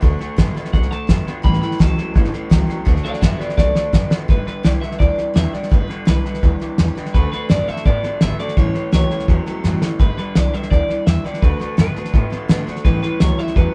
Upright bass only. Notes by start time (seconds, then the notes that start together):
0.03 D2
0.20 muted upright bass stroke
0.38 F#2
0.56 muted upright bass stroke
0.74 B1
1.09 F#2
1.27 muted upright bass stroke
1.45 A1
1.80 C#2
2.16 G1
2.33 muted upright bass stroke
2.51 C#2
2.87 D2
3.22 F#2
3.40 muted upright bass stroke
3.58 B1
3.75 muted upright bass stroke
3.93 F#2
4.11 muted upright bass stroke
4.29 G1
4.46 muted upright bass stroke
4.64 B1
5.00 D2
5.18 muted upright bass stroke
5.36 E2
5.54 muted upright bass stroke
5.72 G1
6.08 B1
6.43 D2
6.79 E2
6.97 muted upright bass stroke
7.15 D2
7.33 muted upright bass stroke
7.50 F#2
7.69 muted upright bass stroke
7.86 A2
8.04 muted upright bass stroke
8.22 G#1
8.57 A1
8.75 muted upright bass stroke
8.93 C#2
9.11 muted upright bass stroke
9.29 E2
9.47 muted upright bass stroke
9.64 F#2
9.82 muted upright bass stroke
10.00 G1
10.18 muted upright bass stroke
10.36 B1
10.72 D2
10.89 muted upright bass stroke
11.07 E2
11.25 muted upright bass stroke
11.43 D2
11.61 muted upright bass stroke
11.79 F#2
11.96 muted upright bass stroke
12.14 A2
12.32 muted upright bass stroke
12.50 B2
12.67 muted upright bass stroke
12.85 A1
13.03 muted upright bass stroke
13.21 C#2
13.39 muted upright bass stroke
13.56 E2